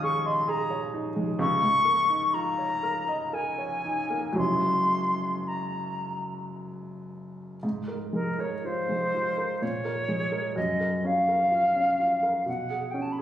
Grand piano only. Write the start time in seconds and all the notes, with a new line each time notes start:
Already playing: D#1 D#2 A#2 G#3 D#4 F4 C#5
0.02 G#4
0.25 D#5
0.48 G#4
0.70 C#5
0.94 D#4
1.16 G#3
1.39 C#2
1.62 G#2
1.85 A#3
2.10 D#4
2.34 F4
2.58 C#5
2.83 A#4
3.08 D#5
3.33 A#4
3.58 C#5
3.84 D#4
4.10 A#3
4.32 F#1 F#2 G#3 E4 F#4 C#5
7.63 G#2
7.88 A#4
8.13 G#3
8.39 A#4
8.64 F4
8.89 G#3
9.14 F4
9.38 A#4
9.62 A#2
9.85 A#4
10.08 G#3
10.32 A#4
10.56 F#2
10.80 A#4
11.04 C#4
11.28 A#4
11.52 F4
11.76 C#4
12.00 F4
12.23 A#4
12.46 B2
12.70 G#4
12.94 C#4
13.18 G#4